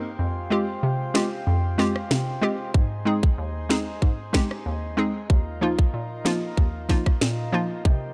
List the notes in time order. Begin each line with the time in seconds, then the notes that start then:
Already playing: A#3 C4 D#4 G4 C5
0.19 F2 G#3 C4 F4
0.50 G#3 C4 F4 G4
0.83 C3
1.14 G#3 C4 F4 G4, finger snap, snare
1.47 F2
1.78 G#3 C4 F4 G4, snare
1.96 cross-stick
2.11 C3, finger snap, snare
2.42 G#3 C4 F4 G4
2.74 G#2 D#4 G#4, kick
3.05 G#3 C4 D#4 G#4
3.23 kick
3.38 D#2
3.69 G#3 C4 D#4 G#4, finger snap, snare
4.02 G#2, kick
4.33 G#3 C4 D#4 G4, finger snap, kick, snare
4.51 cross-stick
4.66 D#2
4.97 G#3 C4 D#4 G#4
5.29 D#2 F4 A#4, kick
5.61 F3 A#3 D#4 F4
5.79 kick
5.94 A#2
6.25 F3 A#3 D#4 F4, finger snap, snare
6.57 D#2, kick
6.89 F3 A#3 D#4 F4, kick, snare
7.06 kick, cross-stick
7.21 A#2, finger snap, snare
7.52 F3 A#3 D#4 F4
7.85 C3 A#3 C4 G4 C5, kick